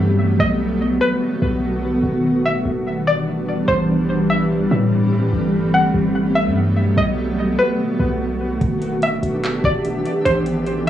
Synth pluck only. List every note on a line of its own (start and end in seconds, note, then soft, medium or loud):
0.00 0.36 E5 medium
0.40 0.98 D#5 medium
1.01 1.21 B4 medium
2.46 3.03 E5 loud
3.07 3.65 D5 medium
3.68 4.26 C5 loud
4.30 4.49 E5 medium
5.74 6.32 F#5 medium
6.35 6.93 E5 medium
6.98 7.55 D#5 medium
7.59 7.78 B4 medium
9.03 9.61 E5 medium
9.65 10.22 D5 medium
10.25 10.83 C5 medium